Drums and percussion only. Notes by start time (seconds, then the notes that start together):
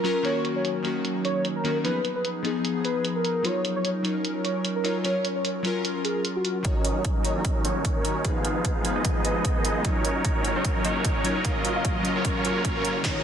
0.05 closed hi-hat
0.25 closed hi-hat
0.45 closed hi-hat
0.65 closed hi-hat
0.85 closed hi-hat
1.05 closed hi-hat
1.25 closed hi-hat
1.45 closed hi-hat
1.65 closed hi-hat
1.85 closed hi-hat
2.05 closed hi-hat
2.25 closed hi-hat
2.45 closed hi-hat
2.65 closed hi-hat
2.85 closed hi-hat
3.05 closed hi-hat
3.25 closed hi-hat
3.45 closed hi-hat
3.65 closed hi-hat
3.85 closed hi-hat
4.05 closed hi-hat
4.25 closed hi-hat
4.45 closed hi-hat
4.65 closed hi-hat
4.85 closed hi-hat
5.05 closed hi-hat
5.25 closed hi-hat
5.45 closed hi-hat
5.65 closed hi-hat
5.85 closed hi-hat
6.05 closed hi-hat
6.25 closed hi-hat
6.45 closed hi-hat
6.65 kick, closed hi-hat
6.85 closed hi-hat
7.05 kick, closed hi-hat
7.25 closed hi-hat
7.45 kick, closed hi-hat
7.65 closed hi-hat
7.85 kick, closed hi-hat
8.05 closed hi-hat
8.25 kick, closed hi-hat
8.45 closed hi-hat
8.65 kick, closed hi-hat
8.85 closed hi-hat
9.05 kick, closed hi-hat
9.25 closed hi-hat
9.45 kick, closed hi-hat
9.65 closed hi-hat
9.85 kick, closed hi-hat
10.05 closed hi-hat
10.25 kick, closed hi-hat
10.45 closed hi-hat
10.65 kick, closed hi-hat
10.85 closed hi-hat
11.05 kick, closed hi-hat
11.25 closed hi-hat
11.45 kick, closed hi-hat
11.65 closed hi-hat
11.85 kick, closed hi-hat
12.05 closed hi-hat
12.25 kick, closed hi-hat
12.45 closed hi-hat
12.65 kick, closed hi-hat
12.85 closed hi-hat
13.05 kick, clap, closed hi-hat